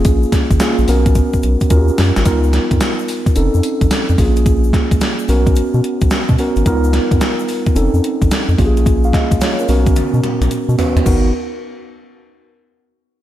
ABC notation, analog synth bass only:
X:1
M:4/4
L:1/16
Q:"Swing 16ths" 1/4=109
K:G#dor
V:1 name="Analog synth bass" clef=bass
A,,,2 z G,,, z A,,, B,,,3 B,,, B,,, z D,,2 F,, G,,, | C,,3 E,, z4 =F,,, =F,, z =A,,, z F,, ^A,,,2- | A,,,3 C,, z2 B,,,3 B,, z B,,, z B,, z G,,, | C,,3 E,, z4 =F,,, =F,, z =A,,, z F,, ^A,,,2- |
A,,,3 C,, z2 B,,,3 B,, z B,,, z B,, z D,, | G,,,2 z12 z2 |]